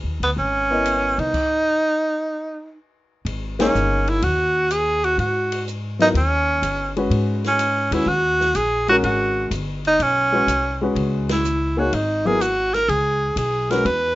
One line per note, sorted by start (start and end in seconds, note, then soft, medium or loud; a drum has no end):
0.04 0.19 D#2 medium
0.20 0.36 D2 medium
0.20 0.30 B3 medium
0.20 ride medium
0.37 1.15 G#1 medium
0.37 1.21 C#4 medium
0.70 1.31 B3 medium
0.70 1.31 E4 medium
0.70 1.32 A#4 medium
0.70 1.32 D#5 medium
0.86 hi-hat pedal medium
0.86 ride medium
1.18 1.33 C2 medium
1.18 2.79 D#4 loud
1.18 ride soft
1.34 kick medium
1.34 crash medium
3.25 3.71 G#1 medium
3.25 ride medium
3.59 4.20 A#3 medium
3.59 4.11 C#4 medium
3.59 4.20 D#4 medium
3.59 4.20 G#4 medium
3.59 4.21 C#5 medium
3.59 snare medium
3.59 ride medium
3.75 4.20 G1 medium
3.75 hi-hat pedal medium
4.08 4.25 E4 medium
4.08 ride soft
4.22 5.15 D#2 medium
4.22 4.73 F#4 medium
4.22 ride medium
4.71 5.06 G#4 loud
4.71 hi-hat pedal medium
4.71 ride medium
5.04 5.19 F#4 medium
5.04 ride soft
5.18 6.11 G#2 medium
5.18 5.64 F#4 medium
5.18 ride soft
5.52 ride medium
5.67 hi-hat pedal medium
5.99 6.13 F#3 medium
5.99 6.13 B3 medium
5.99 6.08 D#4 loud
5.99 6.14 E4 medium
5.99 6.14 A#4 medium
5.99 snare soft
5.99 ride soft
6.14 6.59 D#2 medium
6.14 6.93 C#4 loud
6.14 ride medium
6.62 7.08 G1 medium
6.62 hi-hat pedal medium
6.62 ride medium
6.96 7.56 G#3 medium
6.96 7.57 C#4 medium
6.96 7.57 F#4 medium
6.96 7.57 B4 medium
6.96 ride soft
7.10 7.88 G#2 medium
7.10 ride medium
7.44 7.95 C#4 medium
7.44 snare soft
7.44 ride soft
7.59 hi-hat pedal medium
7.59 ride medium
7.91 8.06 D#2 medium
7.91 8.06 G#3 medium
7.91 8.06 C#4 medium
7.91 8.10 E4 medium
7.91 8.07 F#4 medium
7.91 8.07 B4 medium
7.91 ride medium
8.06 8.52 D#2 medium
8.06 8.57 F#4 loud
8.40 snare soft
8.55 9.00 A#1 medium
8.55 8.89 G#4 medium
8.55 hi-hat pedal medium
8.55 ride medium
8.88 9.49 G#3 medium
8.88 9.49 C#4 medium
8.88 8.96 F#4 loud
8.88 9.49 F#4 medium
8.88 9.50 A#4 medium
8.88 ride soft
9.03 9.48 G#1 medium
9.03 9.49 F#4 medium
9.03 ride medium
9.51 9.96 G1 medium
9.51 hi-hat pedal medium
9.51 ride medium
9.85 10.04 D#4 loud
9.85 ride soft
9.99 10.45 B1 medium
9.99 10.83 C#4 loud
9.99 ride medium
10.32 10.46 G#3 medium
10.32 10.47 C#4 medium
10.32 10.47 F#4 medium
10.32 10.47 B4 medium
10.47 10.93 C2 medium
10.47 hi-hat pedal medium
10.47 ride medium
10.81 11.42 G#3 medium
10.81 11.42 C#4 medium
10.81 11.42 F#4 medium
10.81 11.43 B4 medium
10.95 11.88 C#2 medium
10.95 ride medium
11.29 11.80 E4 medium
11.29 snare medium
11.29 ride medium
11.44 hi-hat pedal medium
11.77 11.91 A#3 medium
11.77 11.91 D#4 medium
11.77 11.96 F#4 medium
11.77 11.91 G#4 medium
11.77 11.92 C#5 medium
11.93 12.85 G#1 medium
11.93 12.28 D#4 medium
11.93 ride medium
12.25 12.39 F#3 medium
12.25 12.40 B3 medium
12.25 12.40 E4 medium
12.25 12.43 G#4 loud
12.25 12.40 A#4 medium
12.41 12.76 F#4 medium
12.41 hi-hat pedal medium
12.41 ride medium
12.74 12.91 A#4 loud
12.74 snare soft
12.74 ride soft
12.88 13.34 C#2 medium
12.88 13.38 G#4 medium
12.88 ride medium
13.36 13.82 B1 medium
13.36 13.72 G#4 medium
13.36 hi-hat pedal medium
13.36 ride medium
13.70 13.84 G#3 medium
13.70 13.84 C#4 medium
13.70 13.85 F#4 medium
13.70 13.87 A#4 loud
13.70 13.85 B4 medium
13.70 snare medium
13.70 ride soft
13.85 14.15 E2 medium
13.85 14.15 B4 loud
13.85 ride medium